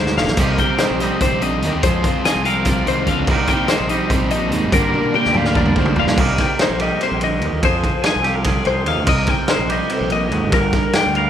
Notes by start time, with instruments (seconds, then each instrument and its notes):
Already playing: fingered electric bass D2, clean electric guitar G3 A#3 F4 A#4 C5
0.00 clean electric guitar G#2
0.07 snare
0.17 fingered electric bass F1, clean electric guitar A#2 F5, snare
0.28 fingered electric bass A#1, snare
0.37 fingered electric bass C2, overdriven electric guitar C3 D#3 G3 C4 G4, clean electric guitar C3 G4 D#5, kick, closed hi-hat, crash
0.52 clean electric guitar A#4
0.58 overdriven electric guitar G3 C4 G4, clean electric guitar G5, kick, closed hi-hat
0.78 overdriven electric guitar D#3 G3 C4 G4, clean electric guitar C5, snare, closed hi-hat
0.84 clean electric guitar D#4
0.91 fingered electric bass A#1
1.00 overdriven electric guitar G3 C4 G4, clean electric guitar G3 D#5, snare, closed hi-hat
1.04 clean electric guitar G4
1.20 overdriven electric guitar C3 D#3 G3 C4 G4, clean electric guitar C3 C5, kick, closed hi-hat
1.32 fingered electric bass A#1
1.41 clean electric guitar D3 D#5, overdriven electric guitar G3 C4 G4, closed hi-hat
1.62 fingered electric bass D#2, overdriven electric guitar D#3 G3 C4 G4, clean electric guitar D#3, snare, closed hi-hat
1.75 fingered electric bass D#2
1.81 fingered electric bass F2, overdriven electric guitar F3 G#3 C4 F4, clean electric guitar C5, kick, closed hi-hat
1.86 clean electric guitar F3 G#4
2.02 overdriven electric guitar G#3 C4 F4, kick, closed hi-hat
2.24 overdriven electric guitar F3 G#3 C4 F4, clean electric guitar G#4 G#5, snare, closed hi-hat
2.36 fingered electric bass C2
2.43 overdriven electric guitar G#3 C4 F4, clean electric guitar C4 A#4 F5, closed hi-hat
2.65 overdriven electric guitar F3 G#3 C4 F4, clean electric guitar F3 D5, kick, snare, closed hi-hat
2.85 fingered electric bass C2, clean electric guitar D#3 C5, overdriven electric guitar G#3 C4 F4, closed hi-hat
3.06 fingered electric bass D#2, clean electric guitar D3 F5, overdriven electric guitar F3 G#3 C4 F4, kick, closed hi-hat
3.17 fingered electric bass C#2
3.27 fingered electric bass C2, overdriven electric guitar C3 G3 C4 D#4, clean electric guitar C3 G3 A#3 D#5, kick, crash
3.31 clean electric guitar D#4 A#4
3.47 overdriven electric guitar G3 C4 D#4, clean electric guitar G5, kick, snare, closed hi-hat
3.68 overdriven electric guitar C3 G3 C4 D#4, clean electric guitar D#4 C5, snare, closed hi-hat
3.80 fingered electric bass A#1
3.89 clean electric guitar G3 G4 D#5, overdriven electric guitar G3 C4 D#4, closed hi-hat
4.10 overdriven electric guitar C3 G3 C4 D#4, clean electric guitar C3 C5, kick, closed hi-hat
4.22 fingered electric bass A#1
4.30 clean electric guitar A#2 D#5, overdriven electric guitar G3 C4 D#4, closed hi-hat
4.51 fingered electric bass D#2, clean electric guitar G#2, overdriven electric guitar C3 G3 C4 D#4, closed hi-hat
4.63 fingered electric bass G#1
4.72 fingered electric bass G1, clean electric guitar G2 G3 A#3 F4 A#4, overdriven electric guitar G2 D3 G3 A#3 D4, kick, closed hi-hat
4.93 overdriven electric guitar G3 A#3 D4, high tom
5.04 high tom
5.13 overdriven electric guitar D3 G3 A#3 D4, clean electric guitar D4 G5, high tom
5.25 fingered electric bass D2, clean electric guitar F4, snare
5.33 clean electric guitar G3 G4 F5, overdriven electric guitar G3 A#3 D4, mid tom
5.45 clean electric guitar A#4, snare
5.54 overdriven electric guitar G2 D3 G3 A#3 D4, clean electric guitar G2 D5, kick, mid tom
5.66 mid tom
5.75 fingered electric bass D2, clean electric guitar G#2 C5, overdriven electric guitar G3 A#3 D4, kick
5.86 floor tom
5.96 fingered electric bass F1, clean electric guitar A#2 F5, overdriven electric guitar D3 G3 A#3 D4, floor tom
6.07 fingered electric bass G2, snare
6.17 fingered electric bass C2, clean electric guitar C3 G3 A#3 D#4 A#4 D#5, kick, crash
6.38 clean electric guitar G5, kick, snare, ride
6.59 clean electric guitar D#4 C5, snare, ride
6.70 fingered electric bass A#1
6.80 clean electric guitar G3 G4 D#5, ride
7.01 clean electric guitar C3 C5, snare, ride
7.12 fingered electric bass A#1
7.21 clean electric guitar D3 D#5, ride
7.41 fingered electric bass D#2, clean electric guitar D#3, ride
7.53 fingered electric bass D#2
7.62 fingered electric bass F2, clean electric guitar F3 G#4 C5, kick, ride
7.84 kick, ride
8.02 clean electric guitar G#4, snare, ride
8.06 clean electric guitar G#5
8.16 fingered electric bass C2
8.23 clean electric guitar C4 G4, snare, ride
8.27 clean electric guitar F5
8.35 clean electric guitar A#4
8.44 clean electric guitar G#4 D5, kick, snare, ride
8.65 fingered electric bass C2, clean electric guitar C3 G#4 C5, ride
8.86 fingered electric bass D#2, clean electric guitar D#4 F5, ride
8.97 fingered electric bass D2
9.05 fingered electric bass C2, clean electric guitar C3 A#4 D#5, kick, crash
9.27 clean electric guitar G5, kick, ride
9.48 clean electric guitar D#4 C5, snare, ride
9.59 fingered electric bass A#1
9.69 clean electric guitar G3 G4 D#5, ride
9.90 clean electric guitar C3 C5, ride
10.01 fingered electric bass A#1
10.10 clean electric guitar A#2 D#5, ride
10.31 fingered electric bass D#2, clean electric guitar G#2, ride
10.43 fingered electric bass G#1
10.52 fingered electric bass G1, clean electric guitar G2 A#4, kick, ride
10.73 kick, snare, ride
10.93 clean electric guitar D4 G5, snare, ride
11.06 fingered electric bass D2, clean electric guitar F4
11.15 clean electric guitar G3 A#4 F5, ride